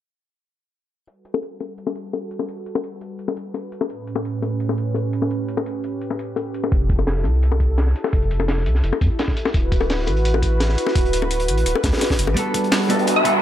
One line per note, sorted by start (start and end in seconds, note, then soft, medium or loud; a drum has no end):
1.07 3.87 G3 medium
1.07 3.87 F#4 medium
1.07 3.87 A4 medium
1.07 6.68 B4 medium
1.07 closed hi-hat medium
1.25 closed hi-hat medium
1.34 high bongo medium
1.43 closed hi-hat medium
1.60 closed hi-hat medium
1.60 high bongo medium
1.78 closed hi-hat medium
1.87 high bongo medium
1.96 closed hi-hat medium
2.13 closed hi-hat medium
2.13 high bongo medium
2.31 closed hi-hat medium
2.39 high bongo medium
2.49 closed hi-hat medium
2.66 closed hi-hat medium
2.75 high bongo medium
2.84 closed hi-hat medium
3.01 closed hi-hat medium
3.19 closed hi-hat medium
3.28 high bongo medium
3.37 closed hi-hat medium
3.54 closed hi-hat medium
3.54 high bongo medium
3.72 closed hi-hat medium
3.81 high bongo medium
3.90 6.69 A2 medium
3.90 6.69 C#4 medium
3.90 9.50 G4 medium
3.90 closed hi-hat medium
4.07 closed hi-hat medium
4.16 high bongo medium
4.25 closed hi-hat medium
4.42 closed hi-hat medium
4.42 high bongo medium
4.60 closed hi-hat medium
4.69 high bongo medium
4.78 closed hi-hat medium
4.94 closed hi-hat medium
4.94 high bongo medium
5.13 closed hi-hat medium
5.22 high bongo medium
5.31 closed hi-hat medium
5.48 closed hi-hat medium
5.57 high bongo medium
5.66 closed hi-hat medium
5.84 closed hi-hat medium
6.01 closed hi-hat medium
6.10 high bongo medium
6.19 closed hi-hat medium
6.36 closed hi-hat medium
6.36 high bongo medium
6.54 closed hi-hat medium
6.64 high bongo medium
6.72 7.26 F1 medium
6.72 12.33 E4 medium
6.72 9.52 A4 medium
6.72 kick loud
6.72 closed hi-hat medium
6.89 kick loud
6.89 closed hi-hat medium
6.99 closed hi-hat soft
6.99 high bongo medium
7.07 snare loud
7.07 closed hi-hat medium
7.07 open hi-hat medium
7.17 snare soft
7.24 7.94 C2 medium
7.24 closed hi-hat medium
7.24 high bongo medium
7.34 closed hi-hat soft
7.43 closed hi-hat medium
7.52 high bongo medium
7.60 kick medium
7.60 closed hi-hat medium
7.78 snare loud
7.78 closed hi-hat medium
7.78 high bongo medium
7.87 snare medium
7.96 closed hi-hat medium
8.04 snare soft
8.04 high bongo medium
8.13 8.68 F1 medium
8.13 kick loud
8.13 closed hi-hat medium
8.22 closed hi-hat soft
8.31 closed hi-hat medium
8.40 closed hi-hat soft
8.40 high bongo medium
8.48 snare loud
8.48 closed hi-hat medium
8.57 snare soft
8.66 8.82 C2 medium
8.66 closed hi-hat medium
8.75 snare soft
8.84 8.92 F1 medium
8.84 closed hi-hat medium
8.93 high bongo medium
9.01 9.09 F2 medium
9.01 kick medium
9.01 closed hi-hat medium
9.19 snare loud
9.19 closed hi-hat medium
9.19 high bongo medium
9.28 kick medium
9.28 snare medium
9.37 closed hi-hat medium
9.45 snare soft
9.45 high bongo medium
9.54 10.09 D1 medium
9.54 12.34 F#4 medium
9.54 12.34 B4 medium
9.54 kick loud
9.54 closed hi-hat medium
9.72 kick medium
9.72 closed hi-hat medium
9.81 closed hi-hat soft
9.81 high bongo medium
9.90 snare loud
9.90 closed hi-hat medium
9.90 open hi-hat medium
9.99 snare soft
10.07 10.77 A1 medium
10.07 closed hi-hat medium
10.07 high bongo medium
10.16 closed hi-hat soft
10.25 closed hi-hat medium
10.34 high bongo medium
10.42 kick medium
10.42 closed hi-hat medium
10.60 snare loud
10.60 closed hi-hat medium
10.60 high bongo medium
10.69 snare medium
10.78 closed hi-hat medium
10.87 snare soft
10.87 high bongo medium
10.95 11.50 D1 loud
10.95 kick loud
10.95 closed hi-hat medium
11.05 closed hi-hat soft
11.13 closed hi-hat medium
11.22 high bongo medium
11.31 closed hi-hat medium
11.40 closed hi-hat medium
11.48 11.64 A1 medium
11.48 closed hi-hat medium
11.58 closed hi-hat medium
11.66 11.74 D1 medium
11.66 closed hi-hat medium
11.75 high bongo medium
11.83 11.92 D2 medium
11.83 kick medium
11.83 snare medium
11.83 closed hi-hat medium
11.83 open hi-hat medium
11.93 snare medium
11.93 open hi-hat medium
11.97 snare medium
11.97 open hi-hat medium
11.97 high bongo medium
12.01 snare medium
12.01 closed hi-hat medium
12.01 open hi-hat medium
12.10 kick medium
12.10 snare medium
12.10 open hi-hat medium
12.19 12.30 F#1 medium
12.19 closed hi-hat medium
12.27 12.36 A1 loud
12.27 high bongo medium
12.34 12.86 G3 medium
12.34 13.42 G3 medium
12.34 12.87 B3 medium
12.34 13.42 D4 medium
12.34 13.42 F#4 medium
12.34 12.88 F#4 medium
12.34 13.42 A4 medium
12.34 13.42 B4 medium
12.34 kick loud
12.34 closed hi-hat medium
12.34 riser medium
12.39 12.89 A4 medium
12.54 kick loud
12.54 closed hi-hat medium
12.64 closed hi-hat soft
12.72 snare loud
12.72 closed hi-hat medium
12.72 open hi-hat medium
12.80 snare soft
12.88 13.22 G3 medium
12.88 13.23 B3 medium
12.88 13.23 F#4 medium
12.88 13.23 A4 medium
12.88 closed hi-hat medium
12.99 closed hi-hat soft
13.07 closed hi-hat medium
13.16 13.41 E5 medium
13.24 13.31 G3 medium
13.24 13.31 B3 medium
13.24 13.32 F#4 medium
13.24 13.32 A4 medium
13.24 kick medium
13.24 closed hi-hat medium